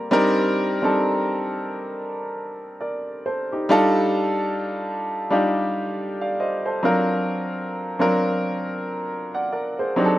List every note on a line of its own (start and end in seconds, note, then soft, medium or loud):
0.00 0.11 G3 medium
0.00 0.14 A#3 medium
0.00 0.12 C4 medium
0.00 0.13 F4 medium
0.00 0.13 A#4 loud
0.11 0.68 G3 loud
0.11 0.68 C4 loud
0.11 0.68 D4 loud
0.11 0.69 D#4 loud
0.11 0.69 A#4 loud
0.82 2.26 G3 medium
0.82 2.26 C4 medium
0.82 2.27 D4 medium
0.82 2.27 D#4 medium
0.82 2.27 A4 loud
2.81 3.23 A#4 soft
2.81 3.23 D5 medium
3.26 3.51 A4 medium
3.26 3.51 C5 medium
3.52 3.69 D#4 medium
3.52 3.94 G4 medium
3.69 4.98 G3 loud
3.69 4.99 D4 medium
3.69 4.99 D#4 loud
3.69 4.99 F4 loud
3.69 4.99 A4 loud
5.30 5.83 G3 loud
5.30 5.84 D4 medium
5.30 5.84 D#4 medium
5.30 5.84 F4 medium
5.30 5.84 G4 loud
6.21 6.38 D5 medium
6.21 6.38 F5 medium
6.40 6.64 C5 medium
6.40 6.64 D#5 medium
6.66 7.08 A4 medium
6.66 7.08 C5 medium
6.83 7.74 F#3 medium
6.83 7.75 C4 medium
6.83 7.75 D4 medium
6.83 7.75 F4 medium
6.83 7.76 A#4 medium
7.99 9.43 F#3 medium
7.99 9.43 C4 medium
7.99 9.43 D4 medium
7.99 9.44 F4 medium
7.99 9.08 A#4 loud
9.35 9.51 D5 medium
9.35 9.51 F#5 medium
9.52 9.78 A#4 medium
9.52 9.77 D5 medium
9.79 10.19 G#4 medium
9.79 10.19 C5 medium
9.96 10.19 F#3 medium
9.96 10.19 C4 medium
9.96 10.19 D4 medium
9.96 10.19 D#4 medium
9.96 10.05 G4 medium
10.05 10.19 A4 medium